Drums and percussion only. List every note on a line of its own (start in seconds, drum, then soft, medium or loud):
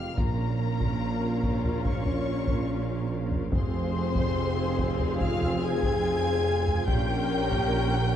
0.18 taiko medium
0.81 taiko medium
1.43 taiko medium
1.64 taiko low soft
1.85 taiko medium
2.06 taiko low soft
2.47 taiko medium
3.31 taiko low soft
3.52 taiko loud
4.15 taiko medium
4.78 taiko medium
5.00 taiko low medium
5.20 taiko medium
5.41 taiko low soft
5.83 taiko medium
6.68 taiko low medium
6.88 taiko loud
7.51 taiko medium